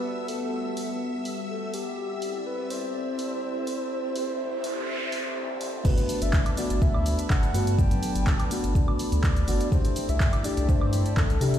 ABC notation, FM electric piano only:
X:1
M:4/4
L:1/8
Q:"Swing 16ths" 1/4=124
K:G
V:1 name="FM electric piano"
z8 | z8 | z8 | [A,B,DF]3 [A,B,DF]4 [A,B,DF] |
[F,A,B,D]3 [A,B,DF]4 [A,B,DF] | [A,DEG]3 [A,DEG]4 [A,DEG] |]